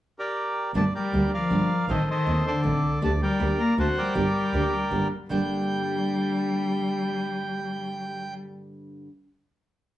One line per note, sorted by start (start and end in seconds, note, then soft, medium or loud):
0.19 0.71 G4 medium
0.19 0.71 A#4 soft
0.19 0.72 D5 medium
0.74 0.91 G1 medium
0.74 0.84 D3 medium
0.74 0.84 G3 medium
0.74 0.85 A3 medium
0.74 0.84 A#3 medium
0.74 0.84 D4 medium
0.74 0.84 G4 medium
0.74 0.93 D5 medium
0.74 0.85 A5 medium
0.95 1.30 G3 medium
0.95 1.32 A#4 medium
0.95 1.32 D5 medium
0.95 1.30 G5 medium
1.13 1.29 D2 soft
1.13 1.30 D3 medium
1.13 1.30 G3 soft
1.13 1.30 A#3 soft
1.13 1.30 D4 medium
1.13 1.30 G4 medium
1.34 1.86 F3 medium
1.34 1.86 A#4 medium
1.34 1.86 D5 medium
1.34 1.92 F5 medium
1.50 1.67 G1 soft
1.50 1.67 D3 soft
1.50 1.68 G3 medium
1.50 1.68 A#3 medium
1.50 1.68 D4 medium
1.50 1.68 G4 medium
1.89 2.05 A1 medium
1.89 1.98 D#3 medium
1.89 2.07 D#3 medium
1.89 1.98 A3 medium
1.89 1.98 C4 medium
1.89 2.09 A4 medium
1.89 2.09 C5 medium
1.89 2.09 D#5 medium
2.08 2.43 D#3 medium
2.08 2.46 A4 medium
2.08 2.62 C5 soft
2.08 2.44 D#5 medium
2.27 2.43 D#2 medium
2.27 2.43 D#3 medium
2.27 2.43 A3 medium
2.27 2.44 C4 medium
2.46 2.99 D3 medium
2.46 2.99 A4 medium
2.46 3.03 D5 medium
2.63 2.80 A1 soft
2.63 2.81 D#3 medium
2.63 2.81 A3 medium
2.63 2.81 C4 medium
2.84 3.02 C2 soft
3.02 3.18 D2 medium
3.02 3.11 D3 medium
3.02 3.10 A3 medium
3.02 3.11 A#3 medium
3.02 3.11 D4 medium
3.02 3.11 G4 medium
3.02 3.21 D5 medium
3.02 3.12 A5 medium
3.21 3.56 G3 medium
3.21 3.75 A#4 medium
3.21 3.75 D5 medium
3.21 3.61 G5 medium
3.39 3.56 D2 medium
3.39 3.56 D3 medium
3.39 3.57 A#3 medium
3.39 3.57 D4 medium
3.39 3.57 G4 medium
3.59 3.77 A#3 medium
3.59 3.77 A#5 medium
3.77 3.94 D2 medium
3.77 3.95 D3 medium
3.77 3.95 A3 medium
3.77 3.87 A3 medium
3.77 3.95 C4 medium
3.77 3.95 F#4 medium
3.77 4.14 C5 medium
3.77 4.14 F#5 medium
3.77 3.87 A5 medium
3.97 5.07 G3 medium
3.97 5.08 A#4 medium
3.97 5.08 D5 medium
3.97 5.07 G5 medium
4.15 4.32 G1 medium
4.15 4.24 D3 medium
4.15 4.24 G3 medium
4.15 4.24 A#3 medium
4.15 4.25 D4 medium
4.15 4.25 G4 medium
4.53 4.70 D2 medium
4.53 4.71 D3 medium
4.53 4.71 G3 medium
4.53 4.71 A#3 medium
4.53 4.71 D4 medium
4.53 4.71 G4 medium
4.91 5.08 G1 medium
4.91 5.08 D3 medium
4.91 5.08 G3 medium
4.91 5.09 A#3 medium
4.91 5.09 D4 medium
4.91 5.09 G4 medium
5.29 5.46 G1 soft
5.29 9.08 G2 medium
5.29 9.08 D3 medium
5.29 8.34 G3 medium
5.29 9.08 G3 medium
5.29 9.08 A#3 medium
5.29 9.08 D4 medium
5.29 9.09 G4 medium
5.29 8.34 G5 medium